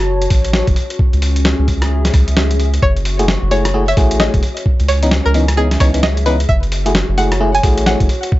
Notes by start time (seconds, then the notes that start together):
Already playing: F#1 F#4 C#5 A5
0.22 closed hi-hat
0.30 A1, kick, open hi-hat
0.45 closed hi-hat
0.53 snare
0.67 F#1, kick, closed hi-hat
0.76 C#4, open hi-hat
0.90 closed hi-hat
0.99 kick
1.13 C#2 G#4, closed hi-hat
1.22 open hi-hat
1.36 closed hi-hat
1.45 snare
1.59 C#2
1.67 E5, kick, open hi-hat
1.82 cross-stick, closed hi-hat
2.05 snare, closed hi-hat
2.14 C#2, kick, cross-stick, open hi-hat
2.28 closed hi-hat
2.37 snare
2.51 closed hi-hat
2.60 open hi-hat
2.74 closed hi-hat
2.82 F#1 F#4 C#5, kick
2.96 closed hi-hat
3.05 open hi-hat
3.19 A3 E4 F#4 G#4 C#5, closed hi-hat
3.28 snare
3.42 F#1
3.51 A3 E4 F#4 G#4 C#5, open hi-hat
3.65 cross-stick, closed hi-hat
3.74 A3 E4 F#4 G#4
3.88 E5, closed hi-hat
3.97 A1 A3 E4 F#4 G#4, kick, open hi-hat
4.11 closed hi-hat
4.20 D#5, snare
4.34 F#1, kick, closed hi-hat
4.43 C#4, open hi-hat
4.57 G#4, closed hi-hat
4.66 kick
4.80 C#2, closed hi-hat
4.88 C#5, open hi-hat
5.03 E3 B3 C#4 D#4, closed hi-hat
5.11 snare
5.26 C#2 A#4
5.34 E3 B3 C#4 D#4 E5, open hi-hat
5.48 cross-stick, closed hi-hat
5.57 E3 B3 C#4 D#4 G#4
5.71 snare, closed hi-hat
5.80 C#2 E3 B3 C#4 D#4 C#5, kick, cross-stick, open hi-hat
5.94 E3 B3 C#4 D#4, closed hi-hat
6.03 D#5, snare
6.17 closed hi-hat
6.26 E3 B3 C#4 D#4 B4, open hi-hat
6.40 closed hi-hat
6.49 F#1 F#4 E5, kick
6.63 closed hi-hat
6.72 open hi-hat
6.86 A3 E4 F#4 G#4 C#5, closed hi-hat
6.95 snare
7.09 F#1
7.18 A3 E4 F#4 G#4 F#5, open hi-hat
7.32 cross-stick, closed hi-hat
7.40 A3 E4 F#4 G#4
7.55 G#5, closed hi-hat
7.63 A1 A3 E4 F#4 G#4, kick, open hi-hat
7.78 closed hi-hat
7.86 F#5, snare
8.00 F#1, kick, closed hi-hat
8.09 C#4, open hi-hat
8.23 closed hi-hat
8.32 kick